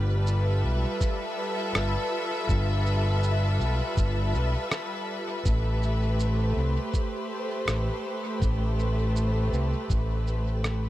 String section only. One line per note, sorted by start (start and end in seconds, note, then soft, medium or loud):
0.00 5.45 G3 medium
0.00 5.45 F4 medium
0.00 1.91 G4 medium
0.00 10.89 B4 medium
0.19 6.54 A4 medium
0.43 6.60 E5 medium
5.46 10.89 A3 medium
5.54 10.89 G4 medium
6.16 10.89 C5 medium